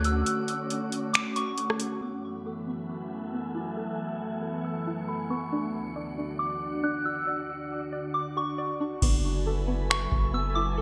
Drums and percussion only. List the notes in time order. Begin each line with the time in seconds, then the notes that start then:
0.04 closed hi-hat
0.26 closed hi-hat
0.48 closed hi-hat
0.70 closed hi-hat
0.92 closed hi-hat
1.14 finger snap, closed hi-hat
1.36 closed hi-hat
1.58 closed hi-hat
1.70 cross-stick
1.80 closed hi-hat
9.02 kick, crash
9.91 finger snap
10.12 kick